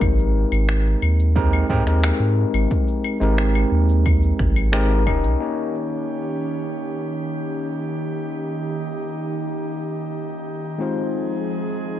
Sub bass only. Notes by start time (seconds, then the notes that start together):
0.01 G#1
0.52 G#1
1.02 D#2
1.70 G#2
1.86 D#2
2.20 G#2
2.54 G#1
3.21 G#1
3.72 D#2
4.40 G#1
5.07 D#1
5.23 C2